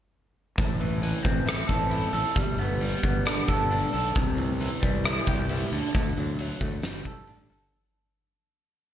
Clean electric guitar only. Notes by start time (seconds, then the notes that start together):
0.58 A2
0.80 E3
1.02 E3
1.23 C4
1.46 E4
1.68 A4
1.90 E4
2.13 A4
2.36 G3
2.59 B3
2.81 G3
3.03 B3
3.26 D4
3.48 A4
3.71 D4
3.93 A4
4.16 C3
4.37 E3
4.60 E3
4.82 G3
5.05 E4
5.27 G4
5.50 E4
5.72 D3
6.17 F#3
6.39 F#3
6.61 A3
6.84 G3
7.07 A4
7.28 D4
7.50 A4